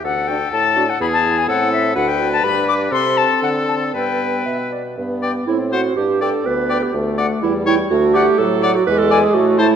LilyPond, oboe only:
\new Staff \with { instrumentName = "Oboe" } { \time 2/4 \key g \major \tempo 4 = 124 a'2 | gis'4 a'4 | b'2 | a'2 |
b'4. r8 | r8 d''16 r8. c''16 r16 | r8 d''16 r8. d''16 r16 | r8 d''16 r8. cis''16 r16 |
r8 d''16 r8. d''16 r16 | r8 d''16 r8. c''16 r16 | }